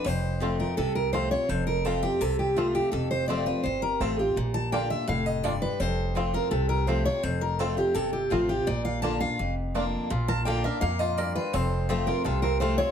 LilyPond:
<<
  \new Staff \with { instrumentName = "Steel-string acoustic guitar" } { \time 4/4 \key bes \major \tempo 4 = 167 c''4. bes'8 a'8 bes'8 c''8 des''8 | c''8 bes'8 a'8 g'8 a'8 g'8 f'8 g'8 | a'8 c''8 d''8 ces''8 c''8 bes'8 a'8 g'8 | r8 a''8 g''8 e''8 f''8 ees''8 d''8 ces''8 |
c''4. bes'8 a'8 bes'8 c''8 des''8 | c''8 bes'8 a'8 g'8 a'8 g'8 f'8 g'8 | d''8 f''8 a''8 f''4 r4. | r8 a''8 g''8 e''8 f''8 ees''8 d''8 ces''8 |
c''4. bes'8 a'8 bes'8 c''8 des''8 | }
  \new Staff \with { instrumentName = "Five-string banjo" } { \time 4/4 \key bes \major r4 <c' f'>8 r4. <c' f'>8 r8 | r4 <c' f'>8 r4. <c' f'>8 r8 | r4 <c' f'>8 r4. <c' f'>8 r8 | r4 <bes d' f'>8 r4. <bes d' f'>8 r8 |
r4 <c' f'>8 r4. <c' f'>8 r8 | r4 <c' f'>8 r4. <c' f'>8 r8 | r4 <bes d' f'>8 r4. <bes d' f'>8 r8 | f'8 bes'8 bes8 bes'8 bes8 f'8 bes'8 f'8 |
c'4 c'8 f'8 f'8 c'8 f'8 c'8 | }
  \new Staff \with { instrumentName = "Steel-string acoustic guitar" } { \time 4/4 \key bes \major << { r4 <f a c' f'>4 r4 <f a c' f'>8 <c' f'>8 | r4 <f a c' f'>8 <c' f'>8 r4 <f a c' f'>4 | r4 <f a c' f'>8 <c' f'>8 r4 <f a c' f'>8 <c' f'>8 | r4 <d bes d' f'>8 <d' f'>8 r2 |
r4 <f a c' f'>8 <c' f'>8 r4 <f a c' f'>8 <c' f'>8 | r4 <f a c' f'>8 <c' f'>8 r4 <f a c' f'>8 <c' f'>8 | r4 <d bes d' f'>8 <d' f'>8 r4 <d bes d' f'>4 | r4 <d bes d' f'>8 <d' f'>8 r2 |
r4 <f a c' f'>8 <c' f'>8 r4 <f a c' f'>8 <c' f'>8 | } \\ { f,2 c2 | f,2 c2 | f,2 c2 | bes,2 a,4 g,4 |
f,2 c2 | f,2 c2 | bes,2 f,2 | bes,2 bes,4 g,4 |
f,2 c2 | } >> }
  \new Staff \with { instrumentName = "Upright bass" } { \clef bass \time 4/4 \key bes \major f,,2 c,2 | f,,2 c,2 | f,,2 g,,4 a,,4 | bes,,2 f,,2 |
f,,2 c,2 | f,,2 g,,4 a,,4 | bes,,2 f,,2 | bes,,2 f,2 |
f,,2 c,2 | }
>>